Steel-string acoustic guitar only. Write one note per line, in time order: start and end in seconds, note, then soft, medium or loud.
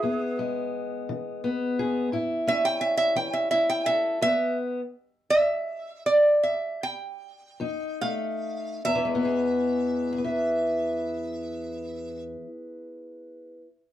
0.03 0.66 E2 medium
0.03 1.43 B3 medium
0.39 2.13 G#3 medium
1.09 1.71 E3 medium
1.44 2.13 B3 medium
1.79 2.09 G#4 medium
2.12 2.75 A2 medium
2.12 3.51 E4 medium
2.47 4.18 C#4 medium
3.16 3.79 E3 medium
3.52 4.18 E4 medium
3.87 4.19 A4 medium
4.21 4.79 E2 medium
4.21 4.80 B3 medium
7.60 8.34 F2 medium
7.60 8.79 D#4 medium
8.02 8.80 A3 medium
8.85 12.35 E2 medium
8.95 12.45 E3 medium
9.05 10.12 G#3 medium
9.15 10.18 B3 medium
9.25 10.13 G#4 medium
10.13 13.55 G#4 medium
10.18 13.61 B4 medium
10.24 13.67 E5 medium